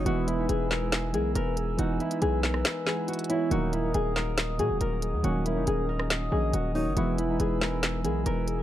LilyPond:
<<
  \new Staff \with { instrumentName = "Glass harmonica" } { \time 4/4 \key fes \lydian \tempo 4 = 139 <b gis'' e'''>1~ | <b gis'' e'''>1 | <bes' ees'' ges'' ees'''>1~ | <bes' ees'' ges'' ees'''>1 |
<b gis'' e'''>1 | }
  \new Staff \with { instrumentName = "Soft synth lead" } { \time 4/4 \key fes \lydian b'2~ b'8 bes'8 b'8 gis'8 | r8 b'2. des''8 | bes'2~ bes'8 aes'8 bes'8 aes'8 | r8 bes'4. ees''4. des''8 |
b'2~ b'8 bes'8 b'8 gis'8 | }
  \new Staff \with { instrumentName = "Nylon-string guitar" } { \time 4/4 \key fes \lydian ges'8 e'8 gis'8 bes'4 gis'8 bes'4 | ges'8 e'8 gis'8 bes'4 gis'8 ges'8 e'8 | ges'8 fes'8 aes'8 bes'4 aes'8 bes'4 | ges'8 fes'8 aes'8 bes'4 aes'8 ges'8 ees'8 |
ges'8 e'8 gis'8 bes'4 gis'8 bes'4 | }
  \new Staff \with { instrumentName = "Synth keys" } { \time 4/4 \key fes \lydian <e gis b e'>8 r16 <e gis b ees'>4~ <e gis b ees'>16 r8 <e gis b e'>4 r8 | <e gis b ees'>8 r16 <e gis b e'>4~ <e gis b e'>16 r8 <e gis b e'>8. r16 <e gis b ges'>16 r16 | <ees ges bes ees'>8 r16 <ees ges bes ees'>4~ <ees ges bes ees'>16 r8 <ees ges bes ges'>4 r8 | <ees ges bes des'>8 r16 <ees ges bes ees'>4~ <ees ges bes ees'>16 r8 <ees ges bes des'>8. r16 <ees ges bes ges'>16 r16 |
<e gis b e'>8 r16 <e gis b ees'>4~ <e gis b ees'>16 r8 <e gis b e'>4 r8 | }
  \new Staff \with { instrumentName = "808-style bass" } { \clef bass \time 4/4 \key fes \lydian e,,4 e,,4. b,,8 e,,4 | e,,8 r8 b,,4 r2 | ees,,4 ees,,4. bes,16 ees,,16 ees,,8. ees,16 | ees,,8. fes,,16 ees,,4. bes,,8 ees,,8. ges,,16 |
e,,4 e,,4. b,,8 e,,4 | }
  \new DrumStaff \with { instrumentName = "Drums" } \drummode { \time 4/4 hh8 hh8 hh8 <hc sn>8 <hc hh sn>8 hh8 hh8 hh8 | hh8 hh16 hh16 hh8 <hc sn>16 ss16 <hc hh sn>8 <hc sn>8 hh32 hh32 hh32 hh32 hh8 | hh8 hh8 hh8 <hc sn>8 <hc hh sn>8 hh8 hh8 hh8 | hh8 hh8 hh8. ss16 <hc hh sn>4 hh8 hho8 |
hh8 hh8 hh8 <hc sn>8 <hc hh sn>8 hh8 hh8 hh8 | }
>>